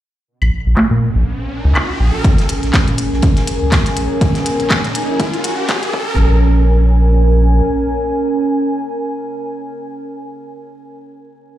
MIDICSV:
0, 0, Header, 1, 6, 480
1, 0, Start_track
1, 0, Key_signature, -5, "minor"
1, 0, Tempo, 491803
1, 271, Time_signature, 4, 2, 24, 8
1, 11303, End_track
2, 0, Start_track
2, 0, Title_t, "Ambient pad"
2, 0, Program_c, 0, 92
2, 271, Note_on_c, 0, 61, 74
2, 582, Note_on_c, 0, 80, 72
2, 906, Note_on_c, 0, 70, 77
2, 5780, Note_off_c, 0, 61, 0
2, 5791, Note_off_c, 0, 70, 0
2, 5791, Note_off_c, 0, 80, 0
2, 5792, Note_on_c, 0, 61, 79
2, 5872, Note_on_c, 0, 70, 78
2, 6188, Note_on_c, 0, 80, 82
2, 9021, Note_off_c, 0, 61, 0
2, 9101, Note_off_c, 0, 70, 0
2, 9417, Note_off_c, 0, 80, 0
2, 11303, End_track
3, 0, Start_track
3, 0, Title_t, "Synth texture"
3, 0, Program_c, 1, 99
3, 2190, Note_on_c, 1, 68, 83
3, 6042, Note_off_c, 1, 68, 0
3, 11303, End_track
4, 0, Start_track
4, 0, Title_t, "Analog synth bass"
4, 0, Program_c, 2, 38
4, 406, Note_on_c, 2, 34, 94
4, 490, Note_off_c, 2, 34, 0
4, 646, Note_on_c, 2, 34, 76
4, 730, Note_off_c, 2, 34, 0
4, 886, Note_on_c, 2, 46, 83
4, 1074, Note_off_c, 2, 46, 0
4, 1126, Note_on_c, 2, 34, 100
4, 1210, Note_off_c, 2, 34, 0
4, 1606, Note_on_c, 2, 37, 106
4, 1690, Note_off_c, 2, 37, 0
4, 1950, Note_on_c, 2, 34, 107
4, 2060, Note_off_c, 2, 34, 0
4, 2326, Note_on_c, 2, 34, 99
4, 2410, Note_off_c, 2, 34, 0
4, 2567, Note_on_c, 2, 34, 76
4, 2651, Note_off_c, 2, 34, 0
4, 2807, Note_on_c, 2, 46, 90
4, 2994, Note_off_c, 2, 46, 0
4, 3047, Note_on_c, 2, 34, 103
4, 3131, Note_off_c, 2, 34, 0
4, 3527, Note_on_c, 2, 37, 104
4, 3611, Note_off_c, 2, 37, 0
4, 3871, Note_on_c, 2, 34, 107
4, 3981, Note_off_c, 2, 34, 0
4, 4247, Note_on_c, 2, 34, 100
4, 4331, Note_off_c, 2, 34, 0
4, 4487, Note_on_c, 2, 34, 82
4, 4571, Note_off_c, 2, 34, 0
4, 4727, Note_on_c, 2, 46, 86
4, 4914, Note_off_c, 2, 46, 0
4, 4968, Note_on_c, 2, 34, 102
4, 5051, Note_off_c, 2, 34, 0
4, 5312, Note_on_c, 2, 34, 100
4, 5421, Note_off_c, 2, 34, 0
4, 5688, Note_on_c, 2, 34, 99
4, 5771, Note_off_c, 2, 34, 0
4, 5791, Note_on_c, 2, 34, 96
4, 7432, Note_off_c, 2, 34, 0
4, 11303, End_track
5, 0, Start_track
5, 0, Title_t, "Riser"
5, 0, Program_c, 3, 103
5, 271, Note_on_c, 3, 60, 69
5, 2190, Note_off_c, 3, 60, 0
5, 2190, Note_on_c, 3, 60, 78
5, 6031, Note_off_c, 3, 60, 0
5, 11303, End_track
6, 0, Start_track
6, 0, Title_t, "Drums"
6, 407, Note_on_c, 9, 75, 55
6, 504, Note_off_c, 9, 75, 0
6, 751, Note_on_c, 9, 39, 84
6, 751, Note_on_c, 9, 63, 68
6, 848, Note_off_c, 9, 39, 0
6, 848, Note_off_c, 9, 63, 0
6, 1711, Note_on_c, 9, 39, 91
6, 1711, Note_on_c, 9, 75, 68
6, 1808, Note_off_c, 9, 39, 0
6, 1808, Note_off_c, 9, 75, 0
6, 2190, Note_on_c, 9, 51, 72
6, 2191, Note_on_c, 9, 36, 118
6, 2191, Note_on_c, 9, 42, 62
6, 2287, Note_off_c, 9, 51, 0
6, 2288, Note_off_c, 9, 36, 0
6, 2289, Note_off_c, 9, 42, 0
6, 2327, Note_on_c, 9, 42, 43
6, 2339, Note_on_c, 9, 38, 50
6, 2425, Note_off_c, 9, 42, 0
6, 2431, Note_on_c, 9, 42, 82
6, 2436, Note_off_c, 9, 38, 0
6, 2436, Note_on_c, 9, 51, 58
6, 2529, Note_off_c, 9, 42, 0
6, 2534, Note_off_c, 9, 51, 0
6, 2567, Note_on_c, 9, 42, 29
6, 2570, Note_on_c, 9, 38, 38
6, 2665, Note_off_c, 9, 42, 0
6, 2667, Note_off_c, 9, 38, 0
6, 2671, Note_on_c, 9, 36, 118
6, 2671, Note_on_c, 9, 38, 102
6, 2671, Note_on_c, 9, 39, 89
6, 2671, Note_on_c, 9, 42, 59
6, 2672, Note_on_c, 9, 51, 88
6, 2768, Note_off_c, 9, 36, 0
6, 2769, Note_off_c, 9, 38, 0
6, 2769, Note_off_c, 9, 39, 0
6, 2769, Note_off_c, 9, 42, 0
6, 2770, Note_off_c, 9, 51, 0
6, 2807, Note_on_c, 9, 42, 43
6, 2904, Note_on_c, 9, 51, 54
6, 2905, Note_off_c, 9, 42, 0
6, 2911, Note_on_c, 9, 42, 92
6, 3002, Note_off_c, 9, 51, 0
6, 3009, Note_off_c, 9, 42, 0
6, 3053, Note_on_c, 9, 38, 39
6, 3144, Note_on_c, 9, 51, 85
6, 3151, Note_off_c, 9, 38, 0
6, 3151, Note_on_c, 9, 36, 115
6, 3151, Note_on_c, 9, 42, 64
6, 3242, Note_off_c, 9, 51, 0
6, 3248, Note_off_c, 9, 36, 0
6, 3249, Note_off_c, 9, 42, 0
6, 3283, Note_on_c, 9, 38, 50
6, 3287, Note_on_c, 9, 42, 41
6, 3381, Note_off_c, 9, 38, 0
6, 3385, Note_off_c, 9, 42, 0
6, 3391, Note_on_c, 9, 42, 87
6, 3391, Note_on_c, 9, 51, 61
6, 3489, Note_off_c, 9, 42, 0
6, 3489, Note_off_c, 9, 51, 0
6, 3631, Note_on_c, 9, 36, 116
6, 3631, Note_on_c, 9, 39, 91
6, 3631, Note_on_c, 9, 42, 65
6, 3632, Note_on_c, 9, 51, 85
6, 3633, Note_on_c, 9, 38, 118
6, 3728, Note_off_c, 9, 36, 0
6, 3729, Note_off_c, 9, 39, 0
6, 3729, Note_off_c, 9, 42, 0
6, 3729, Note_off_c, 9, 51, 0
6, 3730, Note_off_c, 9, 38, 0
6, 3763, Note_on_c, 9, 38, 58
6, 3768, Note_on_c, 9, 42, 45
6, 3861, Note_off_c, 9, 38, 0
6, 3865, Note_off_c, 9, 42, 0
6, 3870, Note_on_c, 9, 51, 62
6, 3871, Note_on_c, 9, 42, 86
6, 3968, Note_off_c, 9, 51, 0
6, 3969, Note_off_c, 9, 42, 0
6, 4111, Note_on_c, 9, 36, 126
6, 4111, Note_on_c, 9, 42, 65
6, 4111, Note_on_c, 9, 51, 86
6, 4208, Note_off_c, 9, 51, 0
6, 4209, Note_off_c, 9, 36, 0
6, 4209, Note_off_c, 9, 42, 0
6, 4248, Note_on_c, 9, 42, 41
6, 4251, Note_on_c, 9, 38, 50
6, 4345, Note_off_c, 9, 42, 0
6, 4348, Note_off_c, 9, 38, 0
6, 4352, Note_on_c, 9, 42, 89
6, 4353, Note_on_c, 9, 51, 64
6, 4449, Note_off_c, 9, 42, 0
6, 4451, Note_off_c, 9, 51, 0
6, 4488, Note_on_c, 9, 42, 31
6, 4584, Note_on_c, 9, 38, 114
6, 4585, Note_off_c, 9, 42, 0
6, 4591, Note_on_c, 9, 36, 124
6, 4592, Note_on_c, 9, 39, 93
6, 4592, Note_on_c, 9, 42, 60
6, 4592, Note_on_c, 9, 51, 93
6, 4681, Note_off_c, 9, 38, 0
6, 4689, Note_off_c, 9, 36, 0
6, 4689, Note_off_c, 9, 39, 0
6, 4689, Note_off_c, 9, 42, 0
6, 4689, Note_off_c, 9, 51, 0
6, 4727, Note_on_c, 9, 38, 57
6, 4728, Note_on_c, 9, 42, 42
6, 4825, Note_off_c, 9, 38, 0
6, 4826, Note_off_c, 9, 42, 0
6, 4831, Note_on_c, 9, 42, 95
6, 4836, Note_on_c, 9, 51, 69
6, 4929, Note_off_c, 9, 42, 0
6, 4933, Note_off_c, 9, 51, 0
6, 5070, Note_on_c, 9, 51, 92
6, 5071, Note_on_c, 9, 36, 120
6, 5071, Note_on_c, 9, 42, 64
6, 5167, Note_off_c, 9, 51, 0
6, 5169, Note_off_c, 9, 36, 0
6, 5169, Note_off_c, 9, 42, 0
6, 5208, Note_on_c, 9, 42, 43
6, 5305, Note_off_c, 9, 42, 0
6, 5311, Note_on_c, 9, 42, 93
6, 5314, Note_on_c, 9, 51, 71
6, 5409, Note_off_c, 9, 42, 0
6, 5412, Note_off_c, 9, 51, 0
6, 5546, Note_on_c, 9, 51, 87
6, 5549, Note_on_c, 9, 38, 116
6, 5551, Note_on_c, 9, 36, 125
6, 5551, Note_on_c, 9, 39, 97
6, 5551, Note_on_c, 9, 42, 67
6, 5643, Note_off_c, 9, 51, 0
6, 5646, Note_off_c, 9, 38, 0
6, 5649, Note_off_c, 9, 36, 0
6, 5649, Note_off_c, 9, 39, 0
6, 5649, Note_off_c, 9, 42, 0
6, 5678, Note_on_c, 9, 38, 44
6, 5688, Note_on_c, 9, 42, 46
6, 5776, Note_off_c, 9, 38, 0
6, 5785, Note_off_c, 9, 42, 0
6, 5791, Note_on_c, 9, 36, 114
6, 5889, Note_off_c, 9, 36, 0
6, 11303, End_track
0, 0, End_of_file